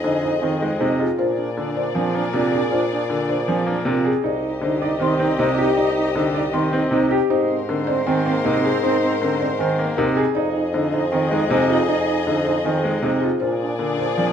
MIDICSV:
0, 0, Header, 1, 7, 480
1, 0, Start_track
1, 0, Tempo, 382166
1, 1492, Time_signature, 4, 2, 24, 8
1, 17993, End_track
2, 0, Start_track
2, 0, Title_t, "Marimba"
2, 0, Program_c, 0, 12
2, 47, Note_on_c, 0, 72, 57
2, 274, Note_on_c, 0, 75, 72
2, 362, Note_off_c, 0, 72, 0
2, 598, Note_off_c, 0, 75, 0
2, 1002, Note_on_c, 0, 72, 65
2, 1249, Note_on_c, 0, 68, 62
2, 1321, Note_off_c, 0, 72, 0
2, 1493, Note_on_c, 0, 72, 76
2, 1563, Note_off_c, 0, 68, 0
2, 1804, Note_off_c, 0, 72, 0
2, 1981, Note_on_c, 0, 70, 60
2, 2221, Note_on_c, 0, 74, 76
2, 2287, Note_off_c, 0, 70, 0
2, 2454, Note_on_c, 0, 80, 56
2, 2527, Note_off_c, 0, 74, 0
2, 2765, Note_off_c, 0, 80, 0
2, 2931, Note_on_c, 0, 70, 75
2, 3180, Note_on_c, 0, 68, 62
2, 3244, Note_off_c, 0, 70, 0
2, 3412, Note_on_c, 0, 72, 66
2, 3487, Note_off_c, 0, 68, 0
2, 3724, Note_off_c, 0, 72, 0
2, 3898, Note_on_c, 0, 70, 58
2, 4137, Note_on_c, 0, 74, 73
2, 4206, Note_off_c, 0, 70, 0
2, 4377, Note_on_c, 0, 80, 56
2, 4446, Note_off_c, 0, 74, 0
2, 4686, Note_off_c, 0, 80, 0
2, 4852, Note_on_c, 0, 70, 77
2, 5105, Note_on_c, 0, 68, 73
2, 5164, Note_off_c, 0, 70, 0
2, 5350, Note_on_c, 0, 74, 77
2, 5409, Note_off_c, 0, 68, 0
2, 5650, Note_off_c, 0, 74, 0
2, 5816, Note_on_c, 0, 72, 61
2, 6061, Note_on_c, 0, 75, 71
2, 6126, Note_off_c, 0, 72, 0
2, 6306, Note_on_c, 0, 84, 68
2, 6367, Note_off_c, 0, 75, 0
2, 6609, Note_off_c, 0, 84, 0
2, 6773, Note_on_c, 0, 72, 80
2, 7018, Note_on_c, 0, 67, 61
2, 7084, Note_off_c, 0, 72, 0
2, 7250, Note_on_c, 0, 74, 76
2, 7326, Note_off_c, 0, 67, 0
2, 7563, Note_off_c, 0, 74, 0
2, 7741, Note_on_c, 0, 72, 65
2, 7988, Note_on_c, 0, 75, 81
2, 8047, Note_off_c, 0, 72, 0
2, 8212, Note_on_c, 0, 84, 66
2, 8290, Note_off_c, 0, 75, 0
2, 8524, Note_off_c, 0, 84, 0
2, 8701, Note_on_c, 0, 72, 81
2, 8932, Note_on_c, 0, 67, 70
2, 9007, Note_off_c, 0, 72, 0
2, 9175, Note_on_c, 0, 72, 87
2, 9244, Note_off_c, 0, 67, 0
2, 9485, Note_off_c, 0, 72, 0
2, 9658, Note_on_c, 0, 70, 69
2, 9885, Note_on_c, 0, 74, 91
2, 9966, Note_off_c, 0, 70, 0
2, 10127, Note_on_c, 0, 80, 66
2, 10201, Note_off_c, 0, 74, 0
2, 10442, Note_off_c, 0, 80, 0
2, 10611, Note_on_c, 0, 70, 84
2, 10850, Note_on_c, 0, 68, 67
2, 10924, Note_off_c, 0, 70, 0
2, 11079, Note_on_c, 0, 72, 87
2, 11163, Note_off_c, 0, 68, 0
2, 11400, Note_off_c, 0, 72, 0
2, 11567, Note_on_c, 0, 70, 70
2, 11815, Note_on_c, 0, 74, 81
2, 11882, Note_off_c, 0, 70, 0
2, 12042, Note_on_c, 0, 80, 65
2, 12125, Note_off_c, 0, 74, 0
2, 12360, Note_off_c, 0, 80, 0
2, 12523, Note_on_c, 0, 70, 82
2, 12757, Note_on_c, 0, 68, 72
2, 12841, Note_off_c, 0, 70, 0
2, 12998, Note_on_c, 0, 74, 88
2, 13079, Note_off_c, 0, 68, 0
2, 13319, Note_off_c, 0, 74, 0
2, 13480, Note_on_c, 0, 72, 67
2, 13722, Note_on_c, 0, 75, 87
2, 13800, Note_off_c, 0, 72, 0
2, 13963, Note_on_c, 0, 80, 59
2, 14040, Note_off_c, 0, 75, 0
2, 14281, Note_off_c, 0, 80, 0
2, 14450, Note_on_c, 0, 72, 77
2, 14689, Note_on_c, 0, 68, 64
2, 14763, Note_off_c, 0, 72, 0
2, 14923, Note_on_c, 0, 74, 73
2, 15003, Note_off_c, 0, 68, 0
2, 15241, Note_off_c, 0, 74, 0
2, 15417, Note_on_c, 0, 72, 59
2, 15638, Note_on_c, 0, 75, 79
2, 15726, Note_off_c, 0, 72, 0
2, 15873, Note_on_c, 0, 80, 52
2, 15959, Note_off_c, 0, 75, 0
2, 16197, Note_off_c, 0, 80, 0
2, 16355, Note_on_c, 0, 72, 72
2, 16582, Note_on_c, 0, 68, 60
2, 16678, Note_off_c, 0, 72, 0
2, 16830, Note_on_c, 0, 72, 75
2, 16914, Note_off_c, 0, 68, 0
2, 17156, Note_off_c, 0, 72, 0
2, 17316, Note_on_c, 0, 70, 60
2, 17552, Note_on_c, 0, 74, 71
2, 17639, Note_off_c, 0, 70, 0
2, 17798, Note_on_c, 0, 80, 49
2, 17877, Note_off_c, 0, 74, 0
2, 17993, Note_off_c, 0, 80, 0
2, 17993, End_track
3, 0, Start_track
3, 0, Title_t, "String section"
3, 0, Program_c, 1, 48
3, 0, Note_on_c, 1, 68, 57
3, 0, Note_on_c, 1, 75, 57
3, 1201, Note_off_c, 1, 68, 0
3, 1202, Note_off_c, 1, 75, 0
3, 1489, Note_on_c, 1, 74, 58
3, 1496, Note_on_c, 1, 68, 55
3, 5040, Note_off_c, 1, 74, 0
3, 5044, Note_off_c, 1, 68, 0
3, 5325, Note_on_c, 1, 75, 60
3, 5327, Note_on_c, 1, 67, 66
3, 8878, Note_off_c, 1, 75, 0
3, 8880, Note_off_c, 1, 67, 0
3, 9178, Note_on_c, 1, 70, 64
3, 9187, Note_on_c, 1, 72, 69
3, 12725, Note_off_c, 1, 70, 0
3, 12729, Note_off_c, 1, 72, 0
3, 13018, Note_on_c, 1, 75, 68
3, 13022, Note_on_c, 1, 68, 66
3, 16565, Note_off_c, 1, 75, 0
3, 16567, Note_off_c, 1, 68, 0
3, 16840, Note_on_c, 1, 68, 62
3, 16851, Note_on_c, 1, 74, 61
3, 17993, Note_off_c, 1, 68, 0
3, 17993, Note_off_c, 1, 74, 0
3, 17993, End_track
4, 0, Start_track
4, 0, Title_t, "Grand piano"
4, 0, Program_c, 2, 0
4, 287, Note_on_c, 2, 72, 52
4, 524, Note_on_c, 2, 60, 62
4, 602, Note_off_c, 2, 72, 0
4, 841, Note_off_c, 2, 60, 0
4, 1010, Note_on_c, 2, 63, 61
4, 1247, Note_on_c, 2, 65, 71
4, 1323, Note_off_c, 2, 63, 0
4, 1469, Note_off_c, 2, 65, 0
4, 1487, Note_on_c, 2, 65, 58
4, 1802, Note_off_c, 2, 65, 0
4, 2207, Note_on_c, 2, 72, 57
4, 2449, Note_on_c, 2, 60, 75
4, 2522, Note_off_c, 2, 72, 0
4, 2763, Note_off_c, 2, 60, 0
4, 2929, Note_on_c, 2, 65, 69
4, 3167, Note_on_c, 2, 68, 62
4, 3243, Note_off_c, 2, 65, 0
4, 3413, Note_on_c, 2, 65, 68
4, 3482, Note_off_c, 2, 68, 0
4, 3724, Note_off_c, 2, 65, 0
4, 4132, Note_on_c, 2, 72, 61
4, 4370, Note_on_c, 2, 60, 67
4, 4444, Note_off_c, 2, 72, 0
4, 4683, Note_off_c, 2, 60, 0
4, 4850, Note_on_c, 2, 65, 68
4, 5085, Note_on_c, 2, 68, 72
4, 5163, Note_off_c, 2, 65, 0
4, 5323, Note_on_c, 2, 63, 65
4, 5402, Note_off_c, 2, 68, 0
4, 5641, Note_off_c, 2, 63, 0
4, 6050, Note_on_c, 2, 74, 63
4, 6287, Note_on_c, 2, 60, 81
4, 6363, Note_off_c, 2, 74, 0
4, 6602, Note_off_c, 2, 60, 0
4, 6771, Note_on_c, 2, 63, 72
4, 7008, Note_on_c, 2, 67, 73
4, 7084, Note_off_c, 2, 63, 0
4, 7252, Note_on_c, 2, 63, 69
4, 7323, Note_off_c, 2, 67, 0
4, 7564, Note_off_c, 2, 63, 0
4, 7969, Note_on_c, 2, 74, 63
4, 8208, Note_on_c, 2, 60, 73
4, 8283, Note_off_c, 2, 74, 0
4, 8523, Note_off_c, 2, 60, 0
4, 8691, Note_on_c, 2, 63, 64
4, 8929, Note_on_c, 2, 67, 80
4, 9004, Note_off_c, 2, 63, 0
4, 9170, Note_on_c, 2, 63, 72
4, 9243, Note_off_c, 2, 67, 0
4, 9483, Note_off_c, 2, 63, 0
4, 9887, Note_on_c, 2, 72, 74
4, 10131, Note_on_c, 2, 60, 91
4, 10202, Note_off_c, 2, 72, 0
4, 10444, Note_off_c, 2, 60, 0
4, 10608, Note_on_c, 2, 63, 70
4, 10849, Note_on_c, 2, 68, 68
4, 10923, Note_off_c, 2, 63, 0
4, 11090, Note_on_c, 2, 63, 74
4, 11163, Note_off_c, 2, 68, 0
4, 11403, Note_off_c, 2, 63, 0
4, 11804, Note_on_c, 2, 72, 68
4, 12048, Note_on_c, 2, 60, 72
4, 12121, Note_off_c, 2, 72, 0
4, 12363, Note_off_c, 2, 60, 0
4, 12531, Note_on_c, 2, 63, 67
4, 12770, Note_on_c, 2, 68, 83
4, 12844, Note_off_c, 2, 63, 0
4, 13017, Note_on_c, 2, 63, 75
4, 13083, Note_off_c, 2, 68, 0
4, 13326, Note_off_c, 2, 63, 0
4, 13737, Note_on_c, 2, 72, 66
4, 13973, Note_on_c, 2, 60, 74
4, 14046, Note_off_c, 2, 72, 0
4, 14284, Note_off_c, 2, 60, 0
4, 14451, Note_on_c, 2, 63, 71
4, 14685, Note_on_c, 2, 65, 74
4, 14764, Note_off_c, 2, 63, 0
4, 14929, Note_on_c, 2, 63, 65
4, 15002, Note_off_c, 2, 65, 0
4, 15243, Note_off_c, 2, 63, 0
4, 15648, Note_on_c, 2, 72, 65
4, 15885, Note_on_c, 2, 60, 72
4, 15962, Note_off_c, 2, 72, 0
4, 16202, Note_off_c, 2, 60, 0
4, 16370, Note_on_c, 2, 63, 62
4, 16608, Note_on_c, 2, 65, 68
4, 16683, Note_off_c, 2, 63, 0
4, 16829, Note_off_c, 2, 65, 0
4, 16848, Note_on_c, 2, 65, 60
4, 17163, Note_off_c, 2, 65, 0
4, 17574, Note_on_c, 2, 72, 58
4, 17806, Note_on_c, 2, 60, 62
4, 17885, Note_off_c, 2, 72, 0
4, 17993, Note_off_c, 2, 60, 0
4, 17993, End_track
5, 0, Start_track
5, 0, Title_t, "Alto flute"
5, 0, Program_c, 3, 73
5, 38, Note_on_c, 3, 63, 60
5, 211, Note_off_c, 3, 63, 0
5, 274, Note_on_c, 3, 63, 49
5, 449, Note_off_c, 3, 63, 0
5, 516, Note_on_c, 3, 63, 41
5, 690, Note_off_c, 3, 63, 0
5, 758, Note_on_c, 3, 63, 41
5, 931, Note_off_c, 3, 63, 0
5, 993, Note_on_c, 3, 63, 31
5, 1168, Note_off_c, 3, 63, 0
5, 1501, Note_on_c, 3, 62, 37
5, 1666, Note_off_c, 3, 62, 0
5, 1713, Note_on_c, 3, 62, 40
5, 1888, Note_off_c, 3, 62, 0
5, 1959, Note_on_c, 3, 62, 52
5, 2132, Note_off_c, 3, 62, 0
5, 2204, Note_on_c, 3, 62, 56
5, 2375, Note_off_c, 3, 62, 0
5, 2461, Note_on_c, 3, 62, 57
5, 2626, Note_off_c, 3, 62, 0
5, 2703, Note_on_c, 3, 62, 69
5, 2867, Note_off_c, 3, 62, 0
5, 2944, Note_on_c, 3, 62, 70
5, 3108, Note_off_c, 3, 62, 0
5, 3195, Note_on_c, 3, 62, 64
5, 3355, Note_off_c, 3, 62, 0
5, 3421, Note_on_c, 3, 62, 73
5, 3586, Note_off_c, 3, 62, 0
5, 3661, Note_on_c, 3, 62, 70
5, 3826, Note_off_c, 3, 62, 0
5, 3903, Note_on_c, 3, 62, 61
5, 4067, Note_off_c, 3, 62, 0
5, 4138, Note_on_c, 3, 62, 60
5, 4304, Note_off_c, 3, 62, 0
5, 4368, Note_on_c, 3, 62, 43
5, 4538, Note_off_c, 3, 62, 0
5, 4615, Note_on_c, 3, 62, 43
5, 4782, Note_off_c, 3, 62, 0
5, 4860, Note_on_c, 3, 62, 35
5, 5026, Note_off_c, 3, 62, 0
5, 5342, Note_on_c, 3, 63, 37
5, 5506, Note_off_c, 3, 63, 0
5, 5581, Note_on_c, 3, 63, 49
5, 5746, Note_off_c, 3, 63, 0
5, 5830, Note_on_c, 3, 63, 55
5, 5992, Note_off_c, 3, 63, 0
5, 6061, Note_on_c, 3, 63, 57
5, 6226, Note_off_c, 3, 63, 0
5, 6299, Note_on_c, 3, 63, 57
5, 6464, Note_off_c, 3, 63, 0
5, 6538, Note_on_c, 3, 63, 76
5, 6704, Note_off_c, 3, 63, 0
5, 6769, Note_on_c, 3, 63, 76
5, 6938, Note_off_c, 3, 63, 0
5, 7012, Note_on_c, 3, 63, 83
5, 7180, Note_off_c, 3, 63, 0
5, 7244, Note_on_c, 3, 63, 76
5, 7415, Note_off_c, 3, 63, 0
5, 7483, Note_on_c, 3, 63, 81
5, 7655, Note_off_c, 3, 63, 0
5, 7724, Note_on_c, 3, 63, 73
5, 7895, Note_off_c, 3, 63, 0
5, 7980, Note_on_c, 3, 63, 57
5, 8145, Note_off_c, 3, 63, 0
5, 8210, Note_on_c, 3, 63, 47
5, 8379, Note_off_c, 3, 63, 0
5, 8461, Note_on_c, 3, 63, 50
5, 8626, Note_off_c, 3, 63, 0
5, 8700, Note_on_c, 3, 63, 37
5, 8865, Note_off_c, 3, 63, 0
5, 9185, Note_on_c, 3, 60, 42
5, 9348, Note_off_c, 3, 60, 0
5, 9418, Note_on_c, 3, 60, 45
5, 9584, Note_off_c, 3, 60, 0
5, 9665, Note_on_c, 3, 60, 58
5, 9829, Note_off_c, 3, 60, 0
5, 9905, Note_on_c, 3, 60, 62
5, 10069, Note_off_c, 3, 60, 0
5, 10148, Note_on_c, 3, 60, 56
5, 10310, Note_off_c, 3, 60, 0
5, 10383, Note_on_c, 3, 60, 71
5, 10547, Note_off_c, 3, 60, 0
5, 10623, Note_on_c, 3, 60, 78
5, 10787, Note_off_c, 3, 60, 0
5, 10872, Note_on_c, 3, 60, 79
5, 11033, Note_off_c, 3, 60, 0
5, 11108, Note_on_c, 3, 60, 86
5, 11270, Note_off_c, 3, 60, 0
5, 11339, Note_on_c, 3, 60, 70
5, 11505, Note_off_c, 3, 60, 0
5, 11586, Note_on_c, 3, 60, 72
5, 11749, Note_off_c, 3, 60, 0
5, 11822, Note_on_c, 3, 60, 65
5, 11986, Note_off_c, 3, 60, 0
5, 12064, Note_on_c, 3, 60, 48
5, 12228, Note_off_c, 3, 60, 0
5, 12305, Note_on_c, 3, 60, 43
5, 12468, Note_off_c, 3, 60, 0
5, 12524, Note_on_c, 3, 60, 38
5, 12695, Note_off_c, 3, 60, 0
5, 12999, Note_on_c, 3, 63, 40
5, 13171, Note_off_c, 3, 63, 0
5, 13250, Note_on_c, 3, 63, 46
5, 13419, Note_off_c, 3, 63, 0
5, 13481, Note_on_c, 3, 63, 57
5, 13653, Note_off_c, 3, 63, 0
5, 13709, Note_on_c, 3, 63, 62
5, 13885, Note_off_c, 3, 63, 0
5, 13955, Note_on_c, 3, 63, 61
5, 14129, Note_off_c, 3, 63, 0
5, 14199, Note_on_c, 3, 63, 77
5, 14372, Note_off_c, 3, 63, 0
5, 14446, Note_on_c, 3, 63, 78
5, 14616, Note_off_c, 3, 63, 0
5, 14683, Note_on_c, 3, 63, 80
5, 14854, Note_off_c, 3, 63, 0
5, 14929, Note_on_c, 3, 63, 76
5, 15098, Note_off_c, 3, 63, 0
5, 15166, Note_on_c, 3, 63, 61
5, 15336, Note_off_c, 3, 63, 0
5, 15404, Note_on_c, 3, 63, 68
5, 15575, Note_off_c, 3, 63, 0
5, 15642, Note_on_c, 3, 63, 58
5, 15814, Note_off_c, 3, 63, 0
5, 15881, Note_on_c, 3, 63, 43
5, 16053, Note_off_c, 3, 63, 0
5, 16138, Note_on_c, 3, 63, 45
5, 16304, Note_off_c, 3, 63, 0
5, 16367, Note_on_c, 3, 63, 33
5, 16537, Note_off_c, 3, 63, 0
5, 16846, Note_on_c, 3, 62, 38
5, 17016, Note_off_c, 3, 62, 0
5, 17098, Note_on_c, 3, 62, 50
5, 17264, Note_off_c, 3, 62, 0
5, 17327, Note_on_c, 3, 62, 60
5, 17496, Note_off_c, 3, 62, 0
5, 17567, Note_on_c, 3, 62, 61
5, 17737, Note_off_c, 3, 62, 0
5, 17810, Note_on_c, 3, 62, 48
5, 17979, Note_off_c, 3, 62, 0
5, 17993, End_track
6, 0, Start_track
6, 0, Title_t, "Grand piano"
6, 0, Program_c, 4, 0
6, 51, Note_on_c, 4, 50, 56
6, 364, Note_off_c, 4, 50, 0
6, 537, Note_on_c, 4, 51, 54
6, 782, Note_on_c, 4, 56, 56
6, 846, Note_off_c, 4, 51, 0
6, 1012, Note_on_c, 4, 48, 73
6, 1088, Note_off_c, 4, 56, 0
6, 1324, Note_off_c, 4, 48, 0
6, 1977, Note_on_c, 4, 50, 56
6, 2286, Note_off_c, 4, 50, 0
6, 2448, Note_on_c, 4, 53, 54
6, 2691, Note_on_c, 4, 58, 62
6, 2763, Note_off_c, 4, 53, 0
6, 2932, Note_on_c, 4, 48, 66
6, 3004, Note_off_c, 4, 58, 0
6, 3244, Note_off_c, 4, 48, 0
6, 3889, Note_on_c, 4, 50, 59
6, 4203, Note_off_c, 4, 50, 0
6, 4370, Note_on_c, 4, 53, 59
6, 4604, Note_on_c, 4, 58, 64
6, 4684, Note_off_c, 4, 53, 0
6, 4836, Note_on_c, 4, 48, 81
6, 4921, Note_off_c, 4, 58, 0
6, 5159, Note_off_c, 4, 48, 0
6, 5795, Note_on_c, 4, 50, 61
6, 6118, Note_off_c, 4, 50, 0
6, 6274, Note_on_c, 4, 51, 61
6, 6524, Note_on_c, 4, 60, 68
6, 6598, Note_off_c, 4, 51, 0
6, 6768, Note_on_c, 4, 48, 77
6, 6841, Note_off_c, 4, 60, 0
6, 7083, Note_off_c, 4, 48, 0
6, 7730, Note_on_c, 4, 50, 68
6, 8043, Note_off_c, 4, 50, 0
6, 8206, Note_on_c, 4, 51, 60
6, 8451, Note_on_c, 4, 60, 73
6, 8522, Note_off_c, 4, 51, 0
6, 8678, Note_on_c, 4, 48, 76
6, 8764, Note_off_c, 4, 60, 0
6, 8999, Note_off_c, 4, 48, 0
6, 9658, Note_on_c, 4, 50, 68
6, 9966, Note_off_c, 4, 50, 0
6, 10137, Note_on_c, 4, 51, 68
6, 10375, Note_on_c, 4, 58, 67
6, 10446, Note_off_c, 4, 51, 0
6, 10619, Note_on_c, 4, 48, 76
6, 10685, Note_off_c, 4, 58, 0
6, 10927, Note_off_c, 4, 48, 0
6, 11575, Note_on_c, 4, 50, 59
6, 11885, Note_off_c, 4, 50, 0
6, 12062, Note_on_c, 4, 51, 65
6, 12294, Note_on_c, 4, 58, 62
6, 12367, Note_off_c, 4, 51, 0
6, 12535, Note_on_c, 4, 48, 89
6, 12605, Note_off_c, 4, 58, 0
6, 12845, Note_off_c, 4, 48, 0
6, 13491, Note_on_c, 4, 50, 66
6, 13804, Note_off_c, 4, 50, 0
6, 13967, Note_on_c, 4, 51, 62
6, 14207, Note_on_c, 4, 56, 65
6, 14282, Note_off_c, 4, 51, 0
6, 14448, Note_on_c, 4, 48, 82
6, 14522, Note_off_c, 4, 56, 0
6, 14763, Note_off_c, 4, 48, 0
6, 15411, Note_on_c, 4, 50, 63
6, 15724, Note_off_c, 4, 50, 0
6, 15893, Note_on_c, 4, 51, 62
6, 16127, Note_on_c, 4, 56, 63
6, 16204, Note_off_c, 4, 51, 0
6, 16359, Note_on_c, 4, 48, 72
6, 16442, Note_off_c, 4, 56, 0
6, 16679, Note_off_c, 4, 48, 0
6, 17321, Note_on_c, 4, 50, 57
6, 17640, Note_off_c, 4, 50, 0
6, 17803, Note_on_c, 4, 53, 55
6, 17993, Note_off_c, 4, 53, 0
6, 17993, End_track
7, 0, Start_track
7, 0, Title_t, "Bassoon"
7, 0, Program_c, 5, 70
7, 0, Note_on_c, 5, 41, 54
7, 1343, Note_off_c, 5, 41, 0
7, 1491, Note_on_c, 5, 46, 58
7, 5185, Note_off_c, 5, 46, 0
7, 5329, Note_on_c, 5, 36, 59
7, 9024, Note_off_c, 5, 36, 0
7, 9177, Note_on_c, 5, 44, 63
7, 12868, Note_off_c, 5, 44, 0
7, 13011, Note_on_c, 5, 41, 66
7, 16705, Note_off_c, 5, 41, 0
7, 16854, Note_on_c, 5, 46, 57
7, 17993, Note_off_c, 5, 46, 0
7, 17993, End_track
0, 0, End_of_file